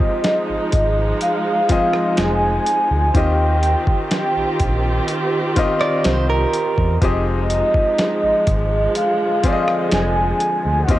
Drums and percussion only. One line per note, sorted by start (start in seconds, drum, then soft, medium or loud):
0.00 kick medium
0.24 snare loud
0.24 closed hi-hat medium
0.72 kick loud
0.72 closed hi-hat medium
1.21 closed hi-hat medium
1.69 kick loud
1.69 closed hi-hat medium
1.93 cross-stick loud
2.17 snare loud
2.17 closed hi-hat medium
2.66 closed hi-hat medium
3.15 kick loud
3.15 closed hi-hat medium
3.63 closed hi-hat medium
3.87 kick medium
4.11 snare loud
4.11 closed hi-hat medium
4.60 kick loud
4.60 closed hi-hat medium
5.08 closed hi-hat medium
5.56 kick medium
5.56 closed hi-hat medium
5.81 cross-stick loud
6.04 snare loud
6.04 closed hi-hat medium
6.53 closed hi-hat medium
6.78 kick medium
7.02 kick loud
7.02 closed hi-hat medium
7.50 closed hi-hat medium
7.74 kick medium
7.98 snare loud
7.98 closed hi-hat medium
8.47 kick loud
8.47 closed hi-hat medium
8.95 closed hi-hat medium
9.44 kick loud
9.44 closed hi-hat medium
9.68 cross-stick loud
9.91 snare loud
9.91 closed hi-hat medium
10.40 closed hi-hat medium
10.89 kick loud
10.89 closed hi-hat medium